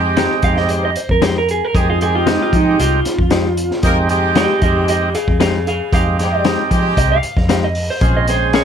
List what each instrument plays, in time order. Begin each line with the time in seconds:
Already playing: fingered electric bass F2, horn section G3 G#3 D#4 G4, tonewheel organ G#3 C4 D#4 G4
0.17 clean electric guitar F3 G#3 D#4 G4, snare, closed hi-hat
0.42 fingered electric bass F2, horn section G3 G#3 D#4 G4, clean electric guitar F5, kick, closed hi-hat
0.57 clean electric guitar D#5, snare
0.69 clean electric guitar C5, closed hi-hat
0.85 clean electric guitar D#5
0.96 clean electric guitar C5, closed hi-hat
1.09 fingered electric bass F2, clean electric guitar A#4, kick
1.22 clean electric guitar F3 G#3 D#4 G4 C5, snare, closed hi-hat
1.38 clean electric guitar A#4
1.49 clean electric guitar G#4, closed hi-hat
1.65 clean electric guitar A#4
1.75 fingered electric bass F2, horn section G3 G#3 D#4 G4, tonewheel organ G#3 C4 D#4 G#4, clean electric guitar G#4, kick, closed hi-hat
1.90 clean electric guitar F4
2.01 horn section G3 G#3 D#4 G4, tonewheel organ G#3 C4 D#4 G4, clean electric guitar G#4, closed hi-hat
2.15 clean electric guitar F4
2.27 clean electric guitar F3 G#3 D#4 G4, snare, closed hi-hat
2.42 clean electric guitar F4
2.53 fingered electric bass F3, horn section G3 G#3 D#4 G4, clean electric guitar D#4, kick, closed hi-hat
2.79 fingered electric bass C2, clean electric guitar F4, closed hi-hat
3.05 snare, closed hi-hat
3.18 fingered electric bass F2, kick
3.30 clean electric guitar F3 G#3 D#4 G4, snare, closed hi-hat
3.57 closed hi-hat
3.71 snare
3.83 fingered electric bass F2, tonewheel organ G#3 C4 D#4 G4, horn section G#3 A#3 D#4 A#4, kick, closed hi-hat
4.09 horn section G3 G#3 D#4 G4, tonewheel organ G#3 C4 D#4 G4, closed hi-hat
4.35 clean electric guitar F3 G#3 D#4 G4 D#5, snare, closed hi-hat
4.62 fingered electric bass F2, horn section G3 G#3 D#4 G4, clean electric guitar G4 D#5, kick, closed hi-hat
4.88 clean electric guitar G4 D#5, closed hi-hat
5.15 clean electric guitar G#4 F5, closed hi-hat
5.28 fingered electric bass F2, kick
5.40 clean electric guitar F3 G#3 D#4 G4 G#4 F5, snare, closed hi-hat
5.67 clean electric guitar G#4 F5, closed hi-hat
5.92 fingered electric bass F2, horn section G3 G#3 D#4 G4, tonewheel organ G#3 C4 D#4 G4, clean electric guitar F5, kick, closed hi-hat
6.18 horn section G3 G#3 D#4 G4, tonewheel organ G#3 C4 D#4 G4, snare, closed hi-hat
6.45 clean electric guitar F3 G#3 D#4 G4, snare, closed hi-hat
6.71 fingered electric bass F3, horn section G3 G#3 D#4 G4, kick, closed hi-hat
6.97 fingered electric bass C2, clean electric guitar D#5, kick, closed hi-hat
7.12 clean electric guitar F5
7.23 closed hi-hat
7.37 fingered electric bass F2, kick, snare
7.49 clean electric guitar F3 G#3 D#4 G4, snare, closed hi-hat
7.64 clean electric guitar D#5
7.75 open hi-hat
7.90 clean electric guitar C5
8.01 fingered electric bass A#1, tonewheel organ G#3 C4 C#4 F4, horn section G#3 C4 C#4 G#4, kick, closed hi-hat
8.17 clean electric guitar D#5
8.27 tonewheel organ G#3 C4 C#4 G#4, horn section G#3 C4 C#4 G#4, clean electric guitar C5, snare, closed hi-hat
8.53 clean electric guitar A#3 C#4 G#4 C5 C#5, snare, closed hi-hat